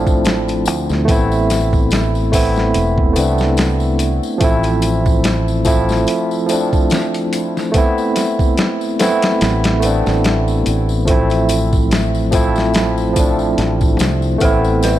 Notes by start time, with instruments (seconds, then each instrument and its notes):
Already playing: fingered electric bass A1, tine electric piano F3 A3 C4 D4 E4
0.07 kick, tambourine
0.25 snare, closed hi-hat, tambourine
0.48 closed hi-hat, tambourine
0.65 fingered electric bass D2, closed hi-hat, tambourine
0.89 fingered electric bass D2, snare, tambourine
1.05 fingered electric bass A1, tine electric piano A3 B3, kick
1.09 tine electric piano C4 E4, closed hi-hat, tambourine
1.32 tambourine
1.50 snare, closed hi-hat, tambourine
1.73 kick, tambourine
1.91 snare, closed hi-hat, tambourine
2.15 tambourine
2.32 tine electric piano A3 B3 C4 E4, kick, open hi-hat, tambourine
2.56 snare, tambourine
2.74 fingered electric bass E1, closed hi-hat, tambourine
2.98 kick
3.13 fingered electric bass C2, tine electric piano A3 B3, closed hi-hat, tambourine
3.17 tine electric piano C4 D4
3.38 snare, tambourine
3.57 snare, closed hi-hat, tambourine
3.80 tambourine
3.99 closed hi-hat, tambourine
4.23 tambourine
4.38 fingered electric bass A1, tine electric piano F3 A3 C4, kick, closed hi-hat, tambourine
4.44 tine electric piano E4
4.63 closed hi-hat, tambourine
4.82 closed hi-hat, tambourine
5.06 kick, tambourine
5.24 snare, closed hi-hat, tambourine
5.48 tambourine
5.65 tine electric piano F3 A3 C4 E4, kick, closed hi-hat, tambourine
5.89 snare, tambourine
6.07 closed hi-hat, tambourine
6.31 tambourine
6.46 tine electric piano F3 A3, closed hi-hat, tambourine
6.51 tine electric piano C4 D4
6.73 kick, tambourine
6.90 snare, closed hi-hat, tambourine
7.14 closed hi-hat, tambourine
7.33 closed hi-hat, tambourine
7.57 snare, tambourine
7.71 tine electric piano A3 B3 C4, kick, closed hi-hat, tambourine
7.78 tine electric piano E4
7.98 tambourine
8.16 snare, closed hi-hat, tambourine
8.39 kick, tambourine
8.57 snare, closed hi-hat, tambourine
8.81 tambourine
8.99 tine electric piano A3 B3 C4 E4, snare, closed hi-hat, tambourine
9.22 snare, closed hi-hat, tambourine
9.41 fingered electric bass A1, snare, closed hi-hat, tambourine
9.64 snare, closed hi-hat
9.80 tine electric piano A3 B3, closed hi-hat, tambourine
9.84 tine electric piano C4 D4
10.06 fingered electric bass A1, snare, tambourine
10.24 snare, closed hi-hat, tambourine
10.48 tambourine
10.66 fingered electric bass A1, closed hi-hat, tambourine
10.89 tambourine
11.05 tine electric piano F3 A3, kick, closed hi-hat, tambourine
11.09 tine electric piano C4 E4
11.30 closed hi-hat, tambourine
11.49 closed hi-hat, tambourine
11.73 kick, tambourine
11.91 snare, closed hi-hat, tambourine
12.15 tambourine
12.32 tine electric piano F3 A3 C4 E4, kick, closed hi-hat, tambourine
12.56 snare, tambourine
12.74 snare, closed hi-hat, tambourine
12.98 tambourine
13.13 tine electric piano F3 A3 C4, kick, closed hi-hat, tambourine
13.19 tine electric piano D4
13.39 tambourine
13.58 fingered electric bass A1, snare, closed hi-hat, tambourine
13.81 kick, tambourine
13.99 fingered electric bass C2, snare, closed hi-hat, tambourine
14.22 tambourine
14.38 fingered electric bass A1, tine electric piano A3 B3, synth bell A4, kick, closed hi-hat, tambourine
14.43 tine electric piano C4 E4
14.64 tambourine
14.83 synth bell B4, snare, closed hi-hat, tambourine